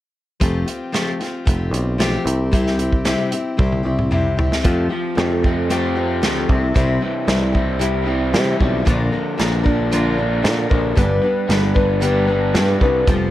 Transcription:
0.40 picked electric bass F1, steel-string acoustic guitar F3 A3 C4 F4 G4, kick, closed hi-hat
0.66 steel-string acoustic guitar C4 F4 G4, closed hi-hat
0.92 steel-string acoustic guitar F3 A3 C4 F4 G4, snare, closed hi-hat
1.20 steel-string acoustic guitar C4 F4 G4, snare, closed hi-hat
1.46 picked electric bass F1, steel-string acoustic guitar A3 C4 F4 G4, kick, closed hi-hat
1.71 picked electric bass B1, steel-string acoustic guitar C4 F4 G4, closed hi-hat
1.98 steel-string acoustic guitar F3 A3 C4 F4 G4, snare, closed hi-hat
2.25 picked electric bass C2, steel-string acoustic guitar C4 E4 G4, closed hi-hat
2.52 steel-string acoustic guitar C3 G3 C4 E4 G4, kick, closed hi-hat
2.67 snare
2.78 steel-string acoustic guitar C4 E4 G4, closed hi-hat
2.93 kick
3.05 steel-string acoustic guitar C3 G3 C4 E4 G4, snare, closed hi-hat
3.31 steel-string acoustic guitar C4 E4 G4, closed hi-hat
3.57 picked electric bass C2, steel-string acoustic guitar G3 C4 E4 G4, kick, high tom
3.72 high tom
3.83 picked electric bass C2, steel-string acoustic guitar C4 E4 G4
3.99 mid tom
4.11 steel-string acoustic guitar C3 G3 C4 E4 G4, mid tom
4.37 steel-string acoustic guitar C4 E4 G4, floor tom
4.52 snare
4.64 picked electric bass F2, steel-string acoustic guitar F3 A3 C4 F4 G4, kick, closed hi-hat
4.89 overdriven electric guitar F3, steel-string acoustic guitar C4 F4 G4
5.15 picked electric bass F2, steel-string acoustic guitar A3 C4 F4 G4, snare, closed hi-hat
5.43 steel-string acoustic guitar C4 F4 G4, kick
5.69 steel-string acoustic guitar F3 A3 C4 F4 G4, closed hi-hat
5.95 steel-string acoustic guitar C4 F4 G4
6.22 picked electric bass D2, overdriven electric guitar F3, steel-string acoustic guitar A3 C4 F4 G4, snare, closed hi-hat
6.48 picked electric bass C2, overdriven electric guitar C3, steel-string acoustic guitar C4 E4 G4, kick
6.74 picked electric bass C2, steel-string acoustic guitar C3 G3 C4 E4 G4, kick, closed hi-hat
7.01 overdriven electric guitar E3, steel-string acoustic guitar C4 E4 G4
7.27 picked electric bass C2, steel-string acoustic guitar G3 C4 E4 G4, snare, closed hi-hat
7.52 steel-string acoustic guitar C4 E4 G4, kick
7.79 steel-string acoustic guitar C3 G3 C4 E4 G4, closed hi-hat
8.05 steel-string acoustic guitar C4 E4 G4
8.33 picked electric bass C3, overdriven electric guitar E3, steel-string acoustic guitar G3 C4 E4 G4, snare, closed hi-hat
8.59 picked electric bass B1, overdriven electric guitar G3, steel-string acoustic guitar C4 E4 G4, kick
8.85 picked electric bass A#1, steel-string acoustic guitar A#2 D3 F3 A#3 D4 A#4, kick, closed hi-hat
9.12 overdriven electric guitar D3, steel-string acoustic guitar F3 A#3 D4 A#4
9.38 picked electric bass A#1, steel-string acoustic guitar F3 A#3 D4 A#4, snare, closed hi-hat
9.63 steel-string acoustic guitar F3 A#3 D4 A#4, kick
9.91 steel-string acoustic guitar A#2 D3 F3 A#3 D4 A#4, overdriven electric guitar F4, closed hi-hat
10.18 steel-string acoustic guitar F3 A#3 D4 A#4
10.43 picked electric bass A#2, overdriven electric guitar D3, steel-string acoustic guitar F3 A#3 D4 A#4, snare, closed hi-hat
10.69 picked electric bass A#1, steel-string acoustic guitar F3 A#3 D4 A#4, kick
10.95 picked electric bass G1, steel-string acoustic guitar G2 D3 G3 B3 D4 B4, kick, closed hi-hat
11.22 steel-string acoustic guitar G3 B3 D4 B4
11.48 picked electric bass G1, steel-string acoustic guitar G3 B3 D4 B4, snare, closed hi-hat
11.74 steel-string acoustic guitar G3 B3 D4 B4, kick
12.00 steel-string acoustic guitar G2 D3 G3 B3 D4 B4, overdriven electric guitar G4, closed hi-hat
12.27 steel-string acoustic guitar G3 B3 D4 B4
12.54 picked electric bass G2, steel-string acoustic guitar G3 B3 D4 B4, snare, closed hi-hat
12.81 picked electric bass C2, steel-string acoustic guitar G3 B3 D4 B4, kick
13.07 picked electric bass F1, steel-string acoustic guitar F3 G3 C4 F4 A4, kick, closed hi-hat

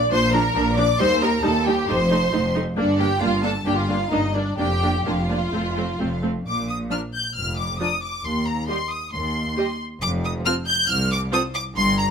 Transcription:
Already playing: violin section D5
0.11 double bass section A#1, cello section A#2, viola section F3 D4, violin section C5 C6
0.32 viola section F3 D4, violin section A#4 A#5
0.55 double bass section A#1, cello section A#2, viola section F3 D4
0.77 viola section F3 D4, violin section D5 D6
0.98 double bass section D#2, cello section D#2, viola section G3 D#4, violin section C5 C6
1.21 viola section G3 D#4, violin section A#4 A#5
1.43 double bass section D#2, cello section D#2, viola section G3 D#4, violin section A4 A5
1.66 viola section G3 D#4, violin section G4 G5
1.88 double bass section F1, cello section F2, viola section A3 D#4, violin section C5 C6
2.10 viola section A3 D#4
2.32 double bass section F1, cello section F2, viola section A3 D#4
2.55 viola section A3 D#4
2.77 double bass section G1, cello section G2, viola section A#3 D4, violin section D4 D5
2.99 viola section A#3 D4, violin section G4 G5
3.20 double bass section G1, cello section G2, viola section A#3 D4, violin section F4 F5
3.43 viola section A#3 D4, violin section A4 A5
3.65 double bass section G1, cello section G2, viola section A#3 D4, violin section G4 G5
3.77 violin section F4 F5
3.88 viola section A#3 D4
4.10 double bass section G1, cello section G2, viola section A#3 D4, violin section D#4 D#5
4.33 viola section A#3 D4, violin section D4 D5
4.58 double bass section F1, cello section F2, viola section A#3 D4, violin section G4 G5
4.82 viola section A#3 D4
5.06 double bass section F1, cello section F2, viola section A#3 D4, violin section F4 F5
5.13 violin section G4
5.21 violin section F4
5.29 viola section A#3 D4
5.53 double bass section F1, cello section F2, viola section A3 C4
5.76 viola section A3 C4
6.00 double bass section F1, cello section F2, viola section A3 C4
6.22 viola section A3 C4
6.46 double bass section A#1, cello section A#2, violin section D6
6.69 violin section D#6
6.90 viola section F3 D4, violin section A#4 D5 F6
7.14 violin section G6
7.35 double bass section F1, cello section F2, violin section F6
7.58 violin section D6
7.80 viola section F3 D4, violin section A#4 D5 D#6
8.03 violin section D6
8.24 double bass section D#2, cello section D#2, violin section C6
8.46 violin section A#5
8.67 viola section G3 G4, violin section G4 D#5 C6
8.89 violin section D#6
9.12 double bass section D#2, cello section D#2, violin section C6
9.56 viola section G3 G4, violin section G4 D#5
10.01 double bass section F1, cello section F2, violin section D6
10.24 violin section D#6
10.45 viola section C4 F4, violin section A4 C5 F6
10.66 violin section G6
10.88 cello section C2, double bass section C2, violin section F6
11.12 violin section D6
11.31 viola section C4 F4, violin section A4 C5 D#6
11.54 violin section D6
11.75 double bass section G1, cello section G2, violin section C6
11.98 violin section A#5

